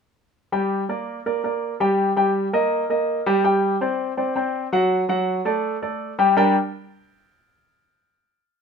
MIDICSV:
0, 0, Header, 1, 2, 480
1, 0, Start_track
1, 0, Key_signature, -2, "minor"
1, 0, Tempo, 365408
1, 686, Time_signature, 4, 2, 24, 8
1, 11319, End_track
2, 0, Start_track
2, 0, Title_t, "Grand piano"
2, 0, Program_c, 0, 0
2, 687, Note_on_c, 0, 55, 77
2, 689, Note_on_c, 0, 67, 72
2, 693, Note_on_c, 0, 79, 72
2, 1080, Note_off_c, 0, 55, 0
2, 1081, Note_off_c, 0, 67, 0
2, 1083, Note_off_c, 0, 79, 0
2, 1168, Note_on_c, 0, 58, 64
2, 1174, Note_on_c, 0, 70, 62
2, 1175, Note_on_c, 0, 74, 69
2, 1560, Note_off_c, 0, 58, 0
2, 1563, Note_off_c, 0, 70, 0
2, 1564, Note_off_c, 0, 74, 0
2, 1655, Note_on_c, 0, 58, 59
2, 1657, Note_on_c, 0, 70, 67
2, 1662, Note_on_c, 0, 74, 62
2, 1847, Note_off_c, 0, 58, 0
2, 1848, Note_off_c, 0, 70, 0
2, 1851, Note_off_c, 0, 74, 0
2, 1889, Note_on_c, 0, 58, 60
2, 1894, Note_on_c, 0, 70, 59
2, 1899, Note_on_c, 0, 74, 61
2, 2280, Note_off_c, 0, 58, 0
2, 2283, Note_off_c, 0, 70, 0
2, 2286, Note_off_c, 0, 74, 0
2, 2368, Note_on_c, 0, 55, 80
2, 2373, Note_on_c, 0, 67, 83
2, 2376, Note_on_c, 0, 79, 77
2, 2759, Note_off_c, 0, 55, 0
2, 2763, Note_off_c, 0, 67, 0
2, 2764, Note_off_c, 0, 79, 0
2, 2843, Note_on_c, 0, 55, 70
2, 2849, Note_on_c, 0, 67, 75
2, 2852, Note_on_c, 0, 79, 76
2, 3237, Note_off_c, 0, 55, 0
2, 3240, Note_off_c, 0, 67, 0
2, 3242, Note_off_c, 0, 79, 0
2, 3329, Note_on_c, 0, 58, 69
2, 3329, Note_on_c, 0, 70, 77
2, 3334, Note_on_c, 0, 75, 79
2, 3720, Note_off_c, 0, 58, 0
2, 3720, Note_off_c, 0, 70, 0
2, 3724, Note_off_c, 0, 75, 0
2, 3806, Note_on_c, 0, 58, 59
2, 3810, Note_on_c, 0, 70, 64
2, 3816, Note_on_c, 0, 75, 61
2, 4199, Note_off_c, 0, 58, 0
2, 4201, Note_off_c, 0, 70, 0
2, 4205, Note_off_c, 0, 75, 0
2, 4287, Note_on_c, 0, 55, 87
2, 4290, Note_on_c, 0, 67, 81
2, 4293, Note_on_c, 0, 79, 77
2, 4483, Note_off_c, 0, 55, 0
2, 4485, Note_off_c, 0, 67, 0
2, 4486, Note_off_c, 0, 79, 0
2, 4522, Note_on_c, 0, 55, 71
2, 4524, Note_on_c, 0, 67, 72
2, 4529, Note_on_c, 0, 79, 78
2, 4917, Note_off_c, 0, 55, 0
2, 4918, Note_off_c, 0, 67, 0
2, 4921, Note_off_c, 0, 79, 0
2, 5004, Note_on_c, 0, 60, 64
2, 5010, Note_on_c, 0, 72, 67
2, 5014, Note_on_c, 0, 74, 65
2, 5399, Note_off_c, 0, 60, 0
2, 5402, Note_off_c, 0, 72, 0
2, 5404, Note_off_c, 0, 74, 0
2, 5482, Note_on_c, 0, 60, 64
2, 5487, Note_on_c, 0, 72, 57
2, 5488, Note_on_c, 0, 74, 62
2, 5680, Note_off_c, 0, 60, 0
2, 5683, Note_off_c, 0, 72, 0
2, 5684, Note_off_c, 0, 74, 0
2, 5722, Note_on_c, 0, 60, 69
2, 5729, Note_on_c, 0, 72, 67
2, 5731, Note_on_c, 0, 74, 62
2, 6118, Note_off_c, 0, 60, 0
2, 6122, Note_off_c, 0, 72, 0
2, 6123, Note_off_c, 0, 74, 0
2, 6207, Note_on_c, 0, 54, 84
2, 6208, Note_on_c, 0, 66, 83
2, 6215, Note_on_c, 0, 78, 86
2, 6601, Note_off_c, 0, 54, 0
2, 6602, Note_off_c, 0, 66, 0
2, 6606, Note_off_c, 0, 78, 0
2, 6683, Note_on_c, 0, 54, 76
2, 6687, Note_on_c, 0, 66, 73
2, 6693, Note_on_c, 0, 78, 80
2, 7079, Note_off_c, 0, 54, 0
2, 7081, Note_off_c, 0, 66, 0
2, 7085, Note_off_c, 0, 78, 0
2, 7163, Note_on_c, 0, 57, 79
2, 7165, Note_on_c, 0, 69, 72
2, 7171, Note_on_c, 0, 74, 75
2, 7559, Note_off_c, 0, 57, 0
2, 7561, Note_off_c, 0, 69, 0
2, 7564, Note_off_c, 0, 74, 0
2, 7648, Note_on_c, 0, 57, 59
2, 7651, Note_on_c, 0, 69, 61
2, 7653, Note_on_c, 0, 74, 65
2, 8042, Note_off_c, 0, 57, 0
2, 8044, Note_off_c, 0, 69, 0
2, 8045, Note_off_c, 0, 74, 0
2, 8126, Note_on_c, 0, 55, 83
2, 8130, Note_on_c, 0, 67, 83
2, 8134, Note_on_c, 0, 79, 78
2, 8324, Note_off_c, 0, 55, 0
2, 8327, Note_off_c, 0, 67, 0
2, 8329, Note_off_c, 0, 79, 0
2, 8361, Note_on_c, 0, 55, 84
2, 8364, Note_on_c, 0, 62, 77
2, 8366, Note_on_c, 0, 67, 84
2, 8370, Note_on_c, 0, 70, 79
2, 8373, Note_on_c, 0, 74, 75
2, 8375, Note_on_c, 0, 79, 96
2, 8588, Note_off_c, 0, 55, 0
2, 8590, Note_off_c, 0, 62, 0
2, 8591, Note_off_c, 0, 67, 0
2, 8593, Note_off_c, 0, 70, 0
2, 8595, Note_off_c, 0, 74, 0
2, 8596, Note_off_c, 0, 79, 0
2, 11319, End_track
0, 0, End_of_file